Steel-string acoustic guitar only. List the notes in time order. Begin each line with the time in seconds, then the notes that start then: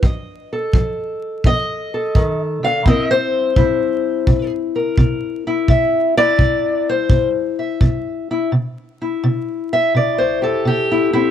0.03 F3 D#5
0.53 A4
0.75 F3
1.45 F3 D#5
1.94 A4
2.16 D#3
2.63 D3 F5
2.86 C3 C4 E4 A#4 D#5
3.11 C5
3.56 C3 E4
4.27 C3
4.76 A#4
4.98 C3
5.47 E4
5.69 C3 E5
6.17 E4 D5
6.38 C3
6.89 C5
7.10 C3
7.59 E5
7.81 C3
8.31 E4
8.52 C3
9.02 E4
9.24 C3
9.73 E5
9.94 C3 D5
10.18 C5
10.42 G4 A4
10.65 C3 G4
10.91 E4
11.13 C4 E4